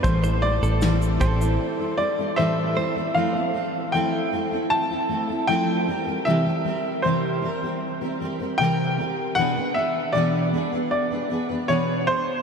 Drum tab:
SH |xx-xxxxx--------|----------------|----------------|----------------|
SD |----o-----------|----------------|----------------|----------------|
BD |o-----o---------|----------------|----------------|----------------|